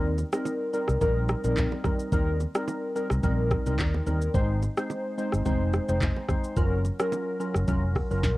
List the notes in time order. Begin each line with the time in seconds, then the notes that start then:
Already playing: D#2 G3 C4 D#4 A#4
0.18 low bongo, shaker
0.33 G3 C4 D#4 A#4, cross-stick, shaker
0.45 high bongo, low bongo, shaker
0.73 G3 C4 D#4 A#4, shaker
0.88 C2, cross-stick, shaker
1.01 A#1 G3 C4 D#4 A#4, kick, low conga, shaker
1.29 cross-stick, high bongo, low bongo, shaker
1.44 A#1 G3 C4 D#4 A#4, high bongo, shaker
1.57 kick, clap, high bongo, shaker
1.72 low bongo
1.84 G3 C4 D#4 A#4, kick, cross-stick, low conga, shaker
1.99 shaker
2.12 D#2 G3 C4 D#4 A#4, kick, low conga, shaker
2.40 low bongo, shaker
2.55 G3 C4 D#4 A#4, cross-stick, shaker
2.68 high bongo, low bongo, shaker
2.95 G3 C4 D#4 A#4, shaker
3.10 C2, cross-stick, shaker
3.23 A#1 G3 C4 D#4 A#4, kick, low conga, shaker
3.51 kick, cross-stick, high bongo, low bongo, shaker
3.66 C2 G3 C4 D#4 A#4, high bongo, shaker
3.79 D#2, kick, clap, high bongo, shaker
3.94 low bongo
4.06 D#2 G3 C4 D#4 A#4, low conga, shaker
4.22 shaker
4.34 G#1 G#3 C4 D#4 C5, kick, low conga, shaker
4.62 low bongo, shaker
4.77 G#3 C4 D#4 C5, cross-stick, shaker
4.90 high bongo, low bongo, shaker
5.18 G#3 C4 D#4 C5, shaker
5.32 G1, cross-stick, shaker
5.45 F1 G#3 C4 D#4 C5, kick, low conga, shaker
5.73 cross-stick, high bongo, low bongo, shaker
5.88 F1 G#3 C4 D#4 C5, high bongo, shaker
6.01 kick, clap, high bongo, shaker
6.16 low bongo
6.29 G#3 C4 D#4 C5, kick, cross-stick, low conga, shaker
6.44 shaker
6.57 F#1 F#3 C#4 F4 A#4, kick, low conga, shaker
6.85 low bongo, shaker
6.99 F#3 C#4 F4 A#4, cross-stick, shaker
7.12 high bongo, low bongo, shaker
7.40 F#3 C#4 F4 A#4, shaker
7.54 F#1, cross-stick, shaker
7.68 F1 F#3 C#4 F4 A#4, kick, low conga, shaker
7.95 kick, cross-stick, open hi-hat, high bongo, low bongo, shaker
8.11 F#1 F#3 C#4 F4 A#4, high bongo, shaker
8.23 A#1, kick, snare, high bongo, shaker